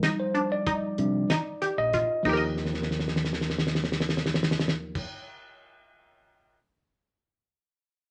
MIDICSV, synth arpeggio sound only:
0, 0, Header, 1, 2, 480
1, 0, Start_track
1, 0, Key_signature, -3, "major"
1, 0, Tempo, 635593
1, 1703, Time_signature, 9, 3, 24, 8
1, 6118, End_track
2, 0, Start_track
2, 0, Title_t, "Synth arpeggio sound"
2, 0, Program_c, 0, 84
2, 27, Note_on_c, 0, 63, 81
2, 224, Note_off_c, 0, 63, 0
2, 260, Note_on_c, 0, 62, 78
2, 460, Note_off_c, 0, 62, 0
2, 504, Note_on_c, 0, 63, 93
2, 900, Note_off_c, 0, 63, 0
2, 983, Note_on_c, 0, 63, 86
2, 1181, Note_off_c, 0, 63, 0
2, 1221, Note_on_c, 0, 67, 73
2, 1420, Note_off_c, 0, 67, 0
2, 1463, Note_on_c, 0, 65, 73
2, 1661, Note_off_c, 0, 65, 0
2, 1701, Note_on_c, 0, 63, 61
2, 1732, Note_on_c, 0, 67, 70
2, 1762, Note_on_c, 0, 70, 69
2, 1791, Note_on_c, 0, 75, 71
2, 3808, Note_off_c, 0, 63, 0
2, 3824, Note_off_c, 0, 67, 0
2, 3839, Note_off_c, 0, 70, 0
2, 3853, Note_off_c, 0, 75, 0
2, 6118, End_track
0, 0, End_of_file